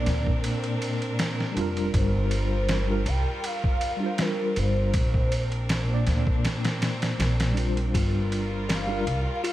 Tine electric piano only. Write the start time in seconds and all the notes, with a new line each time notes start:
Already playing: A#2 A#3 D4 D5
1.52 G3 D4
1.58 F4 A#4
2.87 G3 D4 F4
2.91 A#4
3.97 G3 D4
4.03 F4 C5
5.85 A#2 A#3
5.91 D4 D5
7.52 G3 D4
7.58 F4 C5
8.87 G3 D4 F4
8.92 A#4